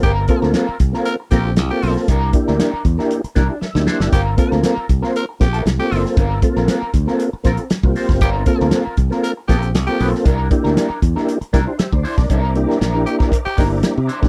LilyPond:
<<
  \new Staff \with { instrumentName = "Tonewheel organ" } { \time 4/4 \key g \dorian \tempo 4 = 117 r1 | r1 | r1 | r1 |
r1 | r1 | <c'' e'' bes'' d'''>1 | }
  \new Staff \with { instrumentName = "Tenor saxophone" } { \time 4/4 \key g \dorian g'16 r16 bes'16 r4 r16 bes'16 r16 g'8 r16 g'8 r16 | r1 | g'16 r16 bes'16 r4 r16 bes'16 r16 g'8 r16 g'8 r16 | r1 |
g'16 r16 bes'16 r4 r16 bes'16 r16 g'8 r16 g'8 r16 | r1 | r4. g'16 r8 g'8 r4 r16 | }
  \new Staff \with { instrumentName = "Clean electric guitar" } { \time 4/4 \key g \dorian <c' f' bes'>8 r16 <c' f' bes'>16 <c' f' bes'>8 r16 <c' f' bes'>16 r8 <c' f' bes'>8 r8 <c' f' c''>8 | <d' e' bes'>8 r16 <d' e' bes'>16 <d' e' bes'>8 r16 <d' e' bes'>16 r8 <d' e' bes'>8 r8 <d' e' c''>8 | <c' f' bes'>8 r16 <c' f' bes'>16 <c' f' bes'>8 r16 <c' f' bes'>16 r8. <c' f' bes'>8 r16 <c' f' c''>8 | <c' f' bes'>8 r16 <c' f' bes'>16 <c' f' bes'>8 r16 <c' f' bes'>16 r8 <c' f' bes'>8 r8 <c' f' c''>8 |
<c' f' bes'>8 r16 <c' f' bes'>16 <c' f' bes'>8 r16 <c' f' bes'>16 r8 <c' f' bes'>8 r8 <c' f' c''>8 | <d' e' bes'>8 r16 <d' e' bes'>16 <d' e' bes'>8 r16 <d' e' bes'>16 r8 <d' e' bes'>8 r8 <d' e' c''>8 | <d' e' bes'>8 r16 <d' e' bes'>16 <d' e' bes'>8 r16 <d' e' bes'>16 r8 <d' e' bes'>8 r8 <d' e' c''>8 | }
  \new Staff \with { instrumentName = "Tonewheel organ" } { \time 4/4 \key g \dorian << { r1 | r2 r8 g'8 e''4 | r1 | r1 |
r1 | r2 r8 bes'16 c''16 <g' c'' e''>16 d''16 <e' c'' d''>16 <d' bes'>16~ | <d' bes'>16 r2. r8. | } \\ { r8 <bes c' f' a'>8. r8 <bes c' f' a'>8 r16 <bes c' f' a'>16 <f' a'>16 r16 <bes c' f' a'>8. | r8 <bes d' e' g'>8. r8 <bes d' e' g'>8 r16 <bes d' e'>16 <e' g'>16 r16 <bes d' ees' e' g'>8. | r8 <bes c' f' a'>8. r8 <bes c' f' c''>8 r16 <bes c' f' a'>16 <f' a'>16 r16 <a bes c' f' a'>8. | r8 <a bes c' f' a'>8. r8 <bes c' f' a'>8 r16 <bes c' f' c''>16 <f' a'>16 r16 <bes c' f' fis' g'>8. |
r8 <bes c' f' a'>8. r8 <bes c' f' a'>8 r16 <bes c' f' a'>16 <f' a'>16 r16 <bes c' f' a'>8. | r8 <bes d' e' g'>8. r8 <bes d' e' g'>8 r16 <bes d' e' g'>16 <e' g'>16 r4 | r8 <bes d' e' g'>8 r16 <bes d' e' g'>8. r8 <bes d' ees' e' g'>8. r8 <bes d' e' g'>16 | } >> }
  \new Staff \with { instrumentName = "Fingered electric bass" } { \clef bass \time 4/4 \key g \dorian g,,8 r16 d,16 r8 c,16 r8. bes,,8 c,16 r16 b,,16 r16 | c,8 r16 d,16 r8 e,16 r8. c,16 r8 d,16 r16 fis,,16 | g,,8 r16 d,16 r8 c,16 r8. bes,,8 c,16 r16 fis,,16 r16 | g,,8 r16 bes,,16 r8 d,16 r8. bes,,16 r8 c,16 r16 fis,,16 |
g,,8 r16 d,16 r8 c,16 r8. bes,,8 c,16 r16 b,,16 r16 | c,8 r16 d,16 r8 e,16 r8. c,16 r8 d,16 r16 b,,16 | c,8. r16 bes,,8 r4 g,,8 r16 c16 r16 b,,16 | }
  \new DrumStaff \with { instrumentName = "Drums" } \drummode { \time 4/4 <hh bd>8 <hh bd>16 sn16 <hh sn>8 <hh bd>16 sn16 hh8 <hh bd sn>8 <hh sn>8 hho16 sn16 | <hh bd>8 <hh bd>16 sn16 <hh sn>8 <hh bd>16 sn16 hh16 hh16 <hh bd sn>8 sn16 sn16 sn16 sn16 | <hh bd>8 <hh bd>16 sn16 <hh sn>8 <hh bd>16 sn16 hh8 <hh bd sn>16 hh16 <hh sn>8 hho16 sn16 | <hh bd>8 <hh bd>16 sn16 <hh sn>8 <hh bd>16 sn16 hh8 <hh bd sn>16 hh16 <hh sn>16 bd16 hho16 <bd sn>16 |
<hh bd>8 <hh bd>16 sn16 <hh sn>8 <hh bd>16 sn16 hh8 <hh bd sn>16 hh16 <hh sn>8 hho16 sn16 | <hh bd>8 <hh bd>16 sn16 <hh sn>8 <hh bd>16 sn16 hh16 hh16 <hh bd sn>8 <hh sn>16 bd16 hho16 <bd sn>16 | <hh bd>8 hh16 sn16 <hh sn>8 hh16 <bd sn>16 <hh bd>8 <hho bd sn>8 <hh sn>8 hh16 <bd sn>16 | }
>>